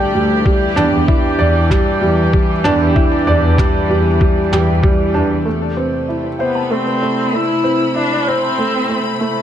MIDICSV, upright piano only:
0, 0, Header, 1, 2, 480
1, 0, Start_track
1, 0, Key_signature, 0, "minor"
1, 0, Tempo, 625000
1, 353, Time_signature, 4, 2, 24, 8
1, 7235, End_track
2, 0, Start_track
2, 0, Title_t, "Upright piano"
2, 0, Program_c, 0, 0
2, 0, Control_c, 0, 64, 127
2, 0, Note_on_c, 0, 55, 63
2, 0, Note_on_c, 0, 62, 89
2, 0, Note_on_c, 0, 67, 76
2, 0, Note_on_c, 0, 79, 91
2, 98, Note_off_c, 0, 55, 0
2, 109, Note_on_c, 0, 55, 68
2, 248, Note_off_c, 0, 55, 0
2, 348, Note_on_c, 0, 55, 77
2, 361, Control_c, 0, 64, 0
2, 364, Note_off_c, 0, 67, 0
2, 366, Note_off_c, 0, 79, 0
2, 367, Note_off_c, 0, 62, 0
2, 487, Note_off_c, 0, 55, 0
2, 512, Control_c, 0, 64, 127
2, 585, Note_on_c, 0, 62, 91
2, 817, Note_off_c, 0, 62, 0
2, 830, Note_on_c, 0, 64, 69
2, 968, Note_off_c, 0, 64, 0
2, 1066, Note_on_c, 0, 74, 89
2, 1297, Note_off_c, 0, 74, 0
2, 1305, Note_on_c, 0, 55, 80
2, 1533, Note_off_c, 0, 55, 0
2, 1545, Note_on_c, 0, 55, 72
2, 1685, Note_off_c, 0, 55, 0
2, 1788, Note_on_c, 0, 55, 70
2, 1927, Note_off_c, 0, 55, 0
2, 2030, Note_on_c, 0, 62, 102
2, 2259, Note_off_c, 0, 62, 0
2, 2272, Note_on_c, 0, 64, 74
2, 2409, Note_off_c, 0, 64, 0
2, 2513, Note_on_c, 0, 74, 93
2, 2741, Note_off_c, 0, 74, 0
2, 2748, Note_on_c, 0, 55, 64
2, 2978, Note_off_c, 0, 55, 0
2, 2992, Note_on_c, 0, 55, 69
2, 3129, Note_off_c, 0, 55, 0
2, 3232, Note_on_c, 0, 55, 79
2, 3369, Note_off_c, 0, 55, 0
2, 3474, Note_on_c, 0, 67, 72
2, 3610, Note_off_c, 0, 67, 0
2, 3708, Note_on_c, 0, 55, 90
2, 3938, Note_off_c, 0, 55, 0
2, 3950, Note_on_c, 0, 62, 75
2, 4179, Note_off_c, 0, 62, 0
2, 4188, Note_on_c, 0, 57, 60
2, 4202, Control_c, 0, 64, 0
2, 4327, Note_off_c, 0, 57, 0
2, 4358, Control_c, 0, 64, 127
2, 4430, Note_on_c, 0, 60, 68
2, 4659, Note_off_c, 0, 60, 0
2, 4674, Note_on_c, 0, 64, 52
2, 4810, Note_off_c, 0, 64, 0
2, 4915, Note_on_c, 0, 72, 75
2, 5141, Note_off_c, 0, 72, 0
2, 5151, Note_on_c, 0, 57, 62
2, 5380, Note_off_c, 0, 57, 0
2, 5393, Note_on_c, 0, 57, 57
2, 5530, Note_off_c, 0, 57, 0
2, 5630, Note_on_c, 0, 57, 56
2, 5768, Note_off_c, 0, 57, 0
2, 5866, Note_on_c, 0, 60, 80
2, 6097, Note_off_c, 0, 60, 0
2, 6112, Note_on_c, 0, 64, 65
2, 6249, Note_off_c, 0, 64, 0
2, 6351, Note_on_c, 0, 72, 75
2, 6580, Note_off_c, 0, 72, 0
2, 6591, Note_on_c, 0, 57, 52
2, 6817, Note_off_c, 0, 57, 0
2, 6829, Note_on_c, 0, 57, 57
2, 6967, Note_off_c, 0, 57, 0
2, 7069, Note_on_c, 0, 57, 67
2, 7208, Note_off_c, 0, 57, 0
2, 7235, End_track
0, 0, End_of_file